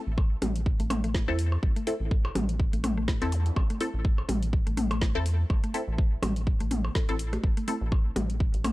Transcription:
0.07 0.36 A1 medium
0.18 kick loud
0.18 percussion blips soft
0.42 0.73 A1 loud
0.42 0.50 G3 medium
0.42 mid tom medium
0.42 open hi-hat loud
0.42 percussion blips medium
0.56 closed hi-hat soft
0.66 kick loud
0.79 1.29 A1 medium
0.79 0.84 A3 medium
0.79 closed hi-hat soft
0.90 0.99 A3 loud
0.90 mid tom loud
0.90 open hi-hat medium
0.90 percussion blips medium
1.04 1.10 A3 medium
1.04 closed hi-hat soft
1.14 1.18 A3 medium
1.14 kick loud
1.14 snare loud
1.28 1.57 E2 loud
1.28 1.38 C4 loud
1.28 1.38 E4 loud
1.28 1.38 A4 loud
1.39 open hi-hat loud
1.52 percussion blips soft
1.63 1.72 A1 loud
1.63 kick loud
1.76 1.83 A3 medium
1.76 closed hi-hat soft
1.87 1.95 C4 medium
1.87 1.95 E4 medium
1.87 1.95 A4 medium
1.87 open hi-hat loud
2.00 2.30 A1 medium
2.11 kick loud
2.25 percussion blips medium
2.35 2.66 A1 medium
2.35 2.44 G3 medium
2.35 mid tom medium
2.35 open hi-hat loud
2.35 percussion blips medium
2.49 closed hi-hat soft
2.60 kick loud
2.73 3.23 A1 medium
2.73 2.78 A3 medium
2.73 closed hi-hat soft
2.84 2.92 A3 loud
2.84 mid tom loud
2.84 open hi-hat loud
2.84 percussion blips soft
2.97 3.04 A3 medium
3.08 3.11 A3 medium
3.08 kick loud
3.08 snare loud
3.21 3.51 E2 loud
3.21 3.31 C4 loud
3.21 3.31 E4 medium
3.21 3.31 A4 loud
3.21 closed hi-hat soft
3.32 open hi-hat loud
3.32 zap medium
3.46 closed hi-hat soft
3.56 3.66 A1 loud
3.56 kick loud
3.56 percussion blips medium
3.70 3.77 A3 medium
3.70 closed hi-hat soft
3.81 3.88 C4 medium
3.81 3.88 E4 medium
3.81 3.88 A4 loud
3.81 open hi-hat medium
3.94 4.23 A1 medium
4.05 kick loud
4.18 percussion blips soft
4.29 4.60 A1 medium
4.29 4.37 G3 medium
4.29 mid tom medium
4.29 open hi-hat loud
4.29 percussion blips medium
4.43 closed hi-hat soft
4.53 kick loud
4.67 5.17 A1 medium
4.67 4.71 A3 medium
4.67 closed hi-hat soft
4.77 4.86 A3 loud
4.77 mid tom loud
4.77 open hi-hat medium
4.91 4.97 A3 medium
4.91 closed hi-hat soft
4.91 percussion blips medium
5.02 5.05 A3 medium
5.02 kick loud
5.02 snare loud
5.15 5.45 E2 medium
5.15 5.25 C4 loud
5.15 5.25 E4 medium
5.15 5.25 A4 loud
5.26 open hi-hat loud
5.50 5.59 A1 loud
5.50 kick loud
5.50 percussion blips soft
5.64 5.70 A3 medium
5.64 closed hi-hat soft
5.74 5.82 C4 medium
5.74 5.82 E4 medium
5.74 5.82 A4 loud
5.74 open hi-hat medium
5.88 6.17 A1 medium
5.98 kick loud
6.22 6.53 A1 medium
6.22 6.31 G3 medium
6.22 mid tom medium
6.22 open hi-hat loud
6.22 percussion blips medium
6.36 closed hi-hat soft
6.47 kick loud
6.60 6.90 A1 medium
6.60 6.65 A3 medium
6.60 closed hi-hat soft
6.71 6.79 A3 medium
6.71 mid tom medium
6.71 open hi-hat loud
6.84 percussion blips soft
6.95 6.99 A4 loud
6.95 kick loud
6.95 snare loud
7.09 7.38 A1 medium
7.09 7.15 C4 medium
7.09 7.15 E4 medium
7.09 7.15 A4 loud
7.09 closed hi-hat soft
7.19 open hi-hat loud
7.33 7.37 A3 medium
7.33 closed hi-hat soft
7.33 percussion blips medium
7.43 7.53 A1 loud
7.43 kick loud
7.57 7.64 A3 medium
7.57 closed hi-hat soft
7.68 7.73 A3 medium
7.68 7.75 C4 medium
7.68 7.75 E4 medium
7.68 7.75 A4 loud
7.68 open hi-hat loud
7.81 8.11 A1 medium
7.92 kick loud
7.92 percussion blips soft
8.16 8.47 A1 medium
8.16 8.24 G3 medium
8.16 mid tom medium
8.16 open hi-hat loud
8.16 percussion blips medium
8.30 closed hi-hat soft
8.40 kick loud
8.54 8.72 A1 medium
8.54 closed hi-hat soft
8.64 8.72 A3 loud
8.64 mid tom medium
8.64 open hi-hat medium
8.64 percussion blips medium

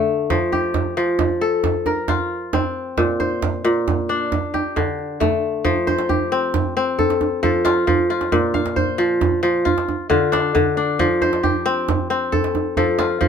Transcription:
0.00 0.35 D3 medium
0.00 1.86 A3 medium
0.00 0.41 D4 medium
0.00 0.52 G4 medium
0.30 0.96 F3 medium
0.30 djembe slap medium
0.30 djembe bass medium
0.52 1.94 G4 medium
0.52 djembe slap soft
0.52 djembe tone medium
0.74 djembe slap medium
0.74 djembe bass medium
0.97 3.03 F3 medium
1.19 djembe slap medium
1.19 djembe tone medium
1.19 djembe bass medium
1.41 1.92 A4 medium
1.64 djembe slap medium
1.64 djembe bass medium
1.86 3.14 A#4 medium
1.86 djembe tone medium
2.08 3.60 F4 medium
2.08 djembe slap medium
2.08 djembe bass medium
2.53 4.33 C4 medium
2.53 djembe slap medium
2.53 djembe tone medium
2.53 djembe bass medium
2.98 3.63 A#2 medium
2.98 djembe slap medium
2.98 djembe bass medium
3.20 4.39 C5 medium
3.20 djembe tone medium
3.42 djembe slap medium
3.42 djembe bass medium
3.64 4.36 A#2 medium
3.76 djembe slap soft
3.88 djembe slap medium
3.88 djembe tone medium
3.88 djembe bass medium
4.09 5.77 D4 medium
4.21 djembe slap soft
4.32 djembe slap medium
4.32 djembe bass medium
4.43 djembe slap soft
4.54 5.95 G4 medium
4.54 djembe tone medium
4.76 5.70 D3 medium
4.76 djembe slap medium
4.76 djembe bass medium
4.88 djembe slap soft
4.99 djembe slap soft
5.20 7.20 A3 medium
5.20 djembe slap medium
5.20 djembe tone medium
5.20 djembe bass medium
5.32 djembe slap soft
5.65 7.42 F3 medium
5.65 djembe bass medium
5.87 7.06 C5 medium
5.87 djembe tone medium
5.99 djembe slap medium
6.09 7.50 G4 medium
6.09 djembe bass medium
6.32 6.76 C4 medium
6.32 djembe slap soft
6.54 djembe slap medium
6.54 djembe tone medium
6.54 djembe bass medium
6.77 8.57 C4 medium
6.99 7.42 A4 medium
6.99 djembe bass medium
7.10 djembe slap medium
7.21 djembe tone medium
7.43 7.86 F3 medium
7.43 8.38 A4 medium
7.43 djembe bass medium
7.65 8.10 F4 medium
7.65 djembe slap medium
7.87 8.37 F3 medium
7.87 djembe tone medium
7.87 djembe bass medium
8.10 9.61 F4 medium
8.10 djembe slap soft
8.21 djembe slap medium
8.32 9.70 A#2 medium
8.32 djembe bass medium
8.54 9.54 F5 medium
8.54 djembe tone medium
8.66 djembe slap medium
8.76 9.95 C5 medium
8.76 djembe bass medium
8.98 9.42 F3 medium
9.21 djembe slap medium
9.21 djembe tone medium
9.21 djembe bass medium
9.43 9.70 F3 medium
9.65 10.09 F4 medium
9.65 djembe bass medium
9.78 djembe slap medium
9.89 djembe tone medium
10.10 10.53 D3 medium
10.10 11.61 F4 medium
10.10 djembe bass medium
10.32 10.77 D4 medium
10.32 djembe slap medium
10.55 11.04 D3 medium
10.55 djembe tone medium
10.55 djembe bass medium
10.77 12.45 D4 medium
10.77 djembe slap soft
10.99 12.76 F3 medium
10.99 djembe bass medium
11.22 12.40 C5 medium
11.22 djembe tone medium
11.33 djembe slap medium
11.43 12.85 G4 medium
11.43 djembe bass medium
11.66 12.10 C4 medium
11.89 djembe slap medium
11.89 djembe tone medium
11.89 djembe bass medium
12.10 13.28 C4 medium
12.32 12.77 A4 medium
12.32 djembe bass medium
12.44 djembe slap medium
12.55 djembe tone medium
12.77 13.19 F3 medium
12.77 13.28 A4 medium
12.77 djembe bass medium
12.99 13.28 F4 medium
12.99 djembe slap medium
13.21 13.28 F3 medium
13.21 djembe tone medium
13.21 djembe bass medium

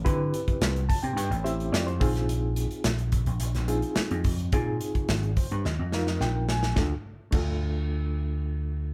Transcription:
0.05 0.31 D3 medium
0.05 0.83 C4 medium
0.05 0.83 E4 medium
0.05 0.82 G4 medium
0.05 0.83 B4 medium
0.05 kick medium
0.05 closed hi-hat medium
0.34 closed hi-hat medium
0.48 kick medium
0.48 closed hi-hat soft
0.61 0.87 C2 medium
0.61 snare medium
0.61 closed hi-hat medium
0.76 closed hi-hat soft
0.89 1.02 A5 medium
0.89 kick medium
0.89 open hi-hat medium
1.03 1.16 C3 medium
1.03 1.16 G5 medium
1.03 closed hi-hat soft
1.16 1.29 G2 medium
1.16 1.43 G5 medium
1.16 closed hi-hat medium
1.30 1.69 A1 medium
1.30 closed hi-hat soft
1.44 1.99 C4 medium
1.44 2.00 E4 medium
1.44 2.00 G4 medium
1.44 1.85 C5 medium
1.44 1.71 E5 medium
1.44 closed hi-hat medium
1.60 closed hi-hat soft
1.72 1.98 F2 medium
1.72 1.86 D5 medium
1.72 snare medium
1.72 closed hi-hat medium
1.87 2.26 C5 medium
1.87 closed hi-hat soft
2.00 2.67 A#1 medium
2.00 2.90 C4 medium
2.00 2.90 D#4 medium
2.00 2.90 F4 medium
2.00 2.90 G#4 medium
2.00 kick loud
2.00 open hi-hat medium
2.16 snare soft
2.16 closed hi-hat soft
2.29 closed hi-hat medium
2.56 closed hi-hat medium
2.71 closed hi-hat soft
2.84 3.23 A#1 medium
2.84 snare medium
2.84 closed hi-hat medium
2.98 closed hi-hat soft
3.12 kick medium
3.12 closed hi-hat medium
3.26 3.39 A#1 medium
3.26 closed hi-hat soft
3.40 3.53 A#1 medium
3.40 closed hi-hat medium
3.55 3.81 A#1 medium
3.55 snare soft
3.55 closed hi-hat soft
3.68 4.26 C4 medium
3.68 4.27 D#4 medium
3.68 4.27 F4 medium
3.68 4.26 G#4 medium
3.68 closed hi-hat medium
3.82 closed hi-hat soft
3.96 muted slap bass stroke soft
3.96 snare medium
3.96 closed hi-hat medium
4.11 4.49 F2 medium
4.11 closed hi-hat soft
4.24 kick medium
4.24 open hi-hat medium
4.39 closed hi-hat soft
4.52 4.78 A#2 medium
4.52 5.30 C4 medium
4.52 5.30 D#4 medium
4.52 5.31 F4 medium
4.52 5.31 G#4 medium
4.52 kick medium
4.52 closed hi-hat medium
4.81 closed hi-hat medium
4.95 kick medium
4.95 closed hi-hat soft
5.08 5.34 G#1 medium
5.08 snare medium
5.08 closed hi-hat medium
5.23 closed hi-hat soft
5.37 5.63 C5 medium
5.37 kick medium
5.37 open hi-hat medium
5.51 5.64 G2 medium
5.51 closed hi-hat soft
5.65 5.78 D#2 medium
5.65 5.91 D#5 medium
5.65 snare soft
5.79 6.17 F2 medium
5.92 6.51 C4 medium
5.92 6.51 D#4 medium
5.92 6.51 F4 medium
5.92 6.51 A#4 medium
5.92 6.06 F5 medium
5.92 snare medium
6.07 6.20 D#5 medium
6.07 snare soft
6.20 6.72 A#1 medium
6.20 6.47 G5 medium
6.20 snare medium
6.49 6.75 G#5 medium
6.49 snare medium
6.63 snare medium
6.74 6.92 D2 medium
6.74 6.91 A3 medium
6.74 6.92 D4 medium
6.74 6.92 F4 medium
6.74 kick medium
6.74 snare medium
6.78 6.93 A4 medium
7.31 8.94 D2 medium
7.31 8.94 A3 medium
7.31 8.94 D4 medium
7.31 8.94 F4 medium
7.31 kick medium
7.31 crash medium
7.35 8.94 A4 medium

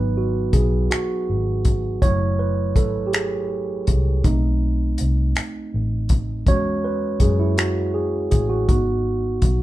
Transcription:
0.00 0.50 G#1 medium
0.00 1.98 F#3 soft
0.00 1.99 B3 soft
0.00 1.99 D#4 medium
0.00 0.18 B4 medium
0.17 0.55 F#4 medium
0.53 0.87 B1 medium
0.53 0.92 G#4 medium
0.53 kick medium
0.53 closed hi-hat medium
0.91 1.70 F#4 medium
0.91 finger snap loud
0.91 closed hi-hat medium
1.29 1.99 G#1 medium
1.65 kick medium
1.65 closed hi-hat medium
2.02 2.76 F#1 medium
2.02 4.21 F#3 soft
2.02 4.21 A3 soft
2.02 4.21 E4 soft
2.02 2.40 C#5 medium
2.02 kick medium
2.02 closed hi-hat medium
2.39 2.77 B4 medium
2.76 3.83 G#1 medium
2.76 3.07 A4 medium
2.76 kick medium
2.76 closed hi-hat medium
3.07 3.13 G4 medium
3.13 4.28 G#4 medium
3.13 finger snap medium
3.13 closed hi-hat medium
3.87 4.22 C2 medium
3.87 kick medium
3.87 closed hi-hat medium
4.24 4.95 B1 medium
4.24 6.43 A3 soft
4.24 6.43 C4 soft
4.24 4.27 D#4 medium
4.24 6.44 D#4 medium
4.24 kick medium
4.24 closed hi-hat medium
4.98 5.33 C2 medium
4.98 closed hi-hat medium
5.36 finger snap medium
5.36 closed hi-hat medium
5.74 6.43 A1 medium
6.09 kick medium
6.09 closed hi-hat medium
6.47 7.17 E2 medium
6.47 7.54 G#3 soft
6.47 7.54 C#4 soft
6.47 7.55 F#4 medium
6.47 6.65 C#5 medium
6.47 kick medium
6.47 closed hi-hat soft
6.84 7.22 B4 medium
7.20 8.28 F#2 medium
7.20 7.40 G#4 medium
7.20 kick medium
7.20 closed hi-hat medium
7.40 7.48 E4 medium
7.58 7.96 F#4 medium
7.58 finger snap medium
7.58 closed hi-hat medium
7.94 8.29 G#4 medium
8.31 8.66 A1 medium
8.31 8.50 G#4 medium
8.31 kick medium
8.31 closed hi-hat medium
8.49 8.68 F#4 medium
8.69 9.39 G#1 medium
8.69 9.63 B3 soft
8.69 9.63 D#4 soft
8.69 9.63 F#4 medium
8.69 kick medium
8.69 closed hi-hat medium
9.42 9.63 B1 medium
9.42 kick medium
9.42 closed hi-hat medium

